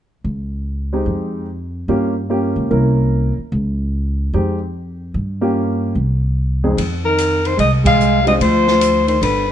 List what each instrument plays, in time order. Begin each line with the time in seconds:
0.24 upright bass C#2
0.93 grand piano G#3 C4 D#4 G4
1.06 upright bass F2
1.88 upright bass G2, grand piano A#3 C#4 F4 G4
2.30 grand piano A#3 C#4 F4 G4
2.56 upright bass C#2
2.71 upright bass C2, grand piano A#3 C#4 E4 A#4
3.38 muted upright bass stroke
3.52 upright bass C#2
4.33 upright bass F2, grand piano G#3 C4 D#4 G4
5.14 upright bass G2
5.41 grand piano A#3 C#4 F4 G4
5.95 upright bass C2
6.64 grand piano F2 G#3 C4 D#4 G#4
6.77 upright bass F2, kick, ride
7.04 trombone D#3, soprano saxophone A#4
7.18 hi-hat pedal, ride
7.44 trombone D#3, soprano saxophone C5, ride
7.57 upright bass C2, trombone G#3, soprano saxophone D#5, kick, ride
7.84 trombone G#3, soprano saxophone F5, kick, ride
8.00 hi-hat pedal
8.24 trombone G3, grand piano G#3 C4 D4 F4, soprano saxophone D#5, ride
8.38 upright bass D2, trombone F3, kick, ride
8.42 soprano saxophone C5
8.67 snare
8.81 hi-hat pedal, ride
9.06 trombone D#3, soprano saxophone C5, ride
9.20 upright bass G1, trombone D3, soprano saxophone B4, kick, ride
9.48 trombone D3